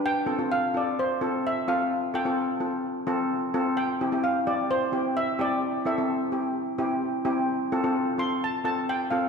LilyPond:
<<
  \new Staff \with { instrumentName = "Steel pan" } { \time 4/4 \key f \lydian \tempo 4 = 129 g''4 f''8 d''8 c''4 e''8 f''8~ | f''8 g''2. r8 | g''4 f''8 d''8 c''4 e''8 d''8~ | d''8 e''2. r8 |
r4. c'''8 a''8 a''8 g''8 f''8 | }
  \new Staff \with { instrumentName = "Steel pan" } { \time 4/4 \key f \lydian r8 <c' f' a'>16 <c' f' a'>8 r16 <c' f' a'>8 r8 <c' f' a'>8 r8 <c' f' a'>8 | r8 <c' f' a'>16 <c' f' a'>8 r16 <c' f' a'>8 r8 <c' f' a'>8 r8 <c' f' a'>8 | r8 <c' e' g'>16 <c' e' g'>8 r16 <c' e' g'>8 r8 <c' e' g'>8 r8 <c' e' g'>8 | r8 <c' e' a'>16 <c' e' a'>8 r16 <c' e' g'>8 r8 <c' e' g'>8 r8 <c' e' g'>8 |
r8 <c' f' a'>16 <c' f' a'>8 r16 <c' f' a'>8 r8 <c' f' a'>8 r8 <c' f' a'>8 | }
>>